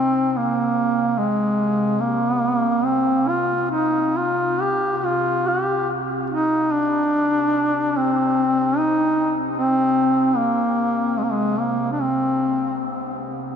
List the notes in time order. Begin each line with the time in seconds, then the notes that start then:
Already playing: C3 C4
0.33 C4
0.37 A#3
1.18 G#3
2.00 A#3
2.85 C4
3.29 F4
3.72 D#4
4.17 F4
4.60 C3 G4
4.97 G4
5.05 F4
5.48 G4
6.30 D#4
6.72 D4
7.97 C4
8.78 D#4
9.58 C4
10.37 A#3
11.18 G#3
11.23 A#3
11.32 G#3
11.60 A#3
11.92 D4
12.02 C4